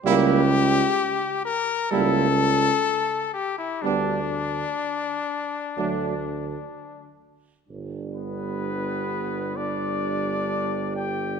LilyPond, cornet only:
\new Staff \with { instrumentName = "Cornet" } { \time 4/4 \key g \major \tempo 4 = 64 g'4. ais'8 a'4. g'16 e'16 | d'2.~ d'8 r8 | r8 b'4. d''4. g''8 | }